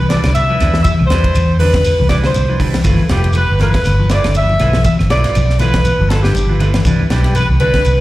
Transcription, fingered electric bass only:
Already playing: C2
0.25 C2
0.61 E2
1.01 C2
1.11 E2
1.36 E2
2.01 C2
2.36 C2
2.85 G1
3.11 F1
3.50 G1
3.86 G1
4.25 G1
4.61 B1
4.99 G1
5.12 B1
5.36 B1
5.99 G1
6.36 G1
6.85 C2
7.11 B1
7.49 C2
7.85 C2

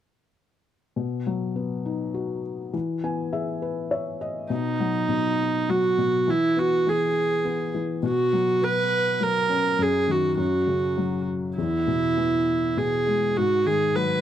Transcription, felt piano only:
0.96 B2
1.27 F#3
1.56 B3
1.86 D#4
2.14 F#4
2.73 E3
3.04 B3 G#5
3.33 G#4 E5
3.62 B4
3.91 C#5 E5
4.21 D#5
4.50 B2
4.80 F#3
5.09 B2
5.69 F#3
5.98 B2
6.28 E3
6.57 B3
6.86 E3
7.45 B3
7.74 E3
8.03 B2
8.33 F#3
8.62 B3
9.20 F#3
9.49 C#4
9.79 F#2
10.08 D#3
10.37 F#2
10.67 C#3
10.97 F#3
11.58 E2
11.87 B2
12.17 E3
12.77 B2
13.07 G#3
13.36 G#2
13.66 D#3
13.96 F#3

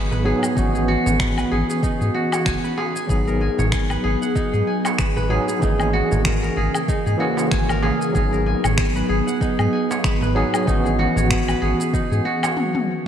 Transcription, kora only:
Already playing: D#4 G#4 B4 C#5 F#5 G#5
0.12 B4
0.25 G#4
0.43 G#4
0.57 D#4
0.75 G#4
0.88 F#4
1.06 C#5
1.20 B4
1.38 B4
1.52 G#4
1.70 G#4
1.83 D#4
2.01 G#4
2.14 F#4
2.33 C#5
2.46 G#5
2.64 B4
2.77 G#4
2.96 G#5
3.10 G#4
3.27 A#4
3.41 G#5
3.59 C#5
3.73 G#5
3.90 B4
4.04 G#4
4.22 F#5
4.36 D#4
4.53 G#4
4.67 G#5
4.85 C#5
4.99 B4
5.17 B4
5.30 G#4
5.48 G#4
5.62 D#4
5.80 G#4
5.93 F#4
6.11 C#5
6.25 A#4
6.43 A#4
6.57 G#4
6.75 G#4
6.89 D#4
7.06 G#4
7.20 F#4
7.38 C#5
7.52 G#5
7.70 A#4
7.83 G#4
8.01 G#5
8.15 G#4
8.33 A#4
8.46 G#5
8.64 C#5
8.78 G#5
8.96 B4
9.09 G#4
9.27 F#5
9.41 D#4
9.59 G#4
9.73 G#5
9.91 C#5
10.04 B4
10.22 B4
10.36 G#4
10.54 G#4
10.67 D#4
10.85 G#4
10.99 F#4
11.17 C#5
11.31 B4
11.48 B4
11.62 G#4
11.80 G#4
11.94 D#4
12.11 G#4
12.25 F#4
12.43 C#5

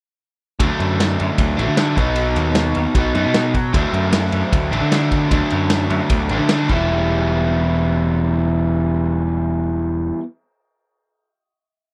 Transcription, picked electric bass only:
0.59 D2
0.80 F#2
1.21 F#2
1.38 D2
1.58 A1
1.68 D3
1.97 B1
2.36 D#2
2.76 D#2
2.95 B1
3.15 F#2
3.26 B2
3.74 D2
3.93 F#2
4.33 F#2
4.52 D2
4.71 A1
4.81 D3
5.31 D2
5.52 F#2
5.90 F#2
6.10 D2
6.30 A1
6.39 D3
6.70 E1

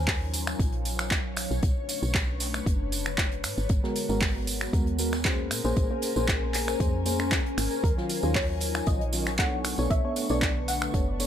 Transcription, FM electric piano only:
3.83 G#3 B3 F#4 A#4
4.09 G#3 B3 F#4 A#4
4.73 G#3 B3 F#4 A#4
4.99 G#3 B3 F#4 A#4
5.25 A#3 C#4 G#4 C5
5.64 A#3 C#4 G#4 C5
5.90 A#3 C#4 G#4 C5
6.16 A#3 C#4 G#4 C5
6.80 A#3 C#4 G#4 C5
7.06 A#3 C#4 G#4 C5
7.19 A#3 C#4 G#4 C5
7.97 D#3 F#3 C#4 F4
8.23 D#3 F#3 C#4 F4
8.87 D#3 F#3 C#4 F4
9.13 D#3 F#3 C#4 F4
9.38 B3 D4 A4 C#5
9.78 B3 D4 A4 C#5
10.04 B3 D4 A4 C#5
10.30 B3 D4 A4 C#5
10.94 B3 D4 A4 C#5
11.19 B3 D4 A4 C#5

